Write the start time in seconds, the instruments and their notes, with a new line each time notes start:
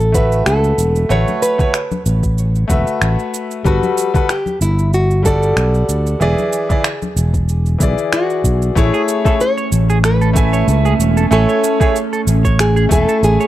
Already playing: fretless electric bass A1, nylon-string guitar A4
0.00 cabasa
0.12 grand piano A3 F#4 B4, nylon-string guitar B4, kick, low conga, cabasa
0.17 grand piano E5
0.32 cabasa
0.46 fretless electric bass C#2, nylon-string guitar A4, finger snap, cabasa
0.64 cabasa
0.78 fretless electric bass E1, cabasa
0.96 cabasa
1.09 fretless electric bass A1, grand piano A3 F#4 B4 C#5, nylon-string guitar C#5, low conga, cabasa
1.28 high conga, cabasa
1.42 nylon-string guitar B4, cabasa
1.58 grand piano A3 F#4 B4 C#5, kick, low conga, cabasa
1.74 finger snap, cabasa
1.91 high conga, cabasa
2.06 fretless electric bass A1, cabasa
2.23 kick, cabasa
2.38 cabasa
2.55 cabasa
2.68 fretless electric bass E1, grand piano A3 F#4 B4, kick, low conga, cabasa
2.72 grand piano E5
2.87 cabasa
3.02 fretless electric bass A1, finger snap, cabasa
3.19 cabasa
3.34 cabasa
3.51 cabasa
3.64 fretless electric bass G1, grand piano G3 F#4 A4 B4, nylon-string guitar F#4, kick, low conga, cabasa
3.83 high conga, cabasa
3.98 cabasa
4.14 grand piano G3 F#4 A4 B4, kick, low conga, cabasa
4.29 nylon-string guitar G4, finger snap, cabasa
4.46 high conga, cabasa
4.61 fretless electric bass G1, nylon-string guitar E4, cabasa
4.79 cabasa
4.93 nylon-string guitar F#4, cabasa
5.11 cabasa
5.23 grand piano G3 F#4 A4, nylon-string guitar A4, kick, low conga, cabasa
5.27 grand piano D5
5.43 cabasa
5.57 fretless electric bass B1, finger snap, cabasa
5.74 cabasa
5.89 fretless electric bass D2, cabasa
6.06 cabasa
6.20 fretless electric bass E1, grand piano E3 E4 G#4 D5, nylon-string guitar G#4, low conga, cabasa
6.38 high conga, cabasa
6.53 cabasa
6.69 grand piano E3 E4 G#4 D5, kick, low conga, cabasa
6.84 finger snap, cabasa
7.02 high conga, cabasa
7.16 fretless electric bass E1, cabasa
7.34 kick, cabasa
7.49 cabasa
7.66 cabasa
7.78 fretless electric bass B1, grand piano E3 E4 G#4, kick, low conga, cabasa
7.83 grand piano D5
7.98 cabasa
8.13 nylon-string guitar F#4, finger snap, cabasa
8.30 cabasa
8.44 fretless electric bass B1, kick, cabasa
8.62 cabasa
8.75 fretless electric bass A1, grand piano A3 E4 G#4 C#5, analog synth pad A3 C#4, nylon-string guitar E4, kick, cabasa
8.94 clean electric guitar G#4, cabasa
9.08 cabasa
9.25 grand piano A3 E4 G#4 C#5, clean electric guitar A4, kick, cabasa
9.40 nylon-string guitar C#5, cabasa
9.57 clean electric guitar C#5, cabasa
9.72 fretless electric bass A1, cabasa
9.90 clean electric guitar G#4, cabasa
10.04 nylon-string guitar B4, finger snap, cabasa
10.21 clean electric guitar A4, cabasa
10.33 grand piano A3 E4 G#5, kick, cabasa
10.38 grand piano E5
10.53 clean electric guitar C#5, cabasa
10.68 fretless electric bass C#2, cabasa
10.85 clean electric guitar G#4, cabasa
10.99 fretless electric bass E1, cabasa
11.17 clean electric guitar A4, cabasa
11.31 fretless electric bass A1, grand piano A3 E4 C#5 G#5, nylon-string guitar A4, cabasa
11.49 clean electric guitar C#5, cabasa
11.64 cabasa
11.80 grand piano A3 E4 G#4 C#5, clean electric guitar G#4, kick, cabasa
11.96 cabasa
12.13 clean electric guitar A4, cabasa
12.27 fretless electric bass A1, cabasa
12.44 clean electric guitar C#5, kick, cabasa
12.59 nylon-string guitar G#4, finger snap, cabasa
12.76 clean electric guitar G#4, cabasa
12.89 fretless electric bass E1, grand piano A3 E4 G#5, nylon-string guitar A4, kick, cabasa
12.93 grand piano E5
13.09 clean electric guitar A4, cabasa
13.23 fretless electric bass A1, nylon-string guitar G#4, cabasa
13.40 clean electric guitar C#5, cabasa